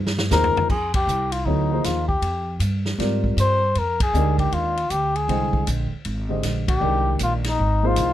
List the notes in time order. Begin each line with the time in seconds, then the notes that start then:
Already playing: G2
0.07 snare
0.19 snare
0.31 D#2 F3 A#3 D#4 G#4 A#4 C5, snare, hi-hat pedal
0.44 floor tom
0.56 muted upright bass stroke, floor tom
0.69 F2 G#4, kick, crash
0.94 G4, kick, ride
1.07 C2, hi-hat pedal
1.32 F4, ride
1.45 D2 F#3 B3 D#4 E4 A4 C#5
1.71 F3 A#3 D#4 G#4 C5
1.84 D#2 F4, snare, hi-hat pedal, ride
2.08 G4, kick
2.22 F2, ride
2.59 G2, hi-hat pedal, ride
2.85 snare
2.98 G#2 G3 C4 F4 A#4 D5, snare, ride
3.24 kick
3.37 G2 C5, hi-hat pedal, ride
3.75 F2 A#4, ride
4.00 G#4, kick, ride
4.13 D2 G#3 D4 D#4 G4 A#4, hi-hat pedal
4.38 G4, kick, ride
4.52 D#2 F4, ride
4.77 ride
4.90 D2 G4, hi-hat pedal, ride
5.16 G#4, ride
5.28 C2 D3 G#3 C5 D#5 G5, ride
5.53 kick
5.67 A#1, hi-hat pedal, ride
5.92 muted upright bass stroke
6.05 G#1, ride
6.29 D3 G#3 G4 C5 D#5
6.43 A#1, snare, hi-hat pedal, ride
6.68 G4, kick, ride
6.80 C2 D#3 G#3 D4 G4 A#4
7.19 A#1, hi-hat pedal, ride
7.23 F4
7.44 snare, ride
7.49 D#4
7.59 G#1
7.83 F3 A#3 D#4 G#4 C5
7.87 F4
7.96 C2, hi-hat pedal, ride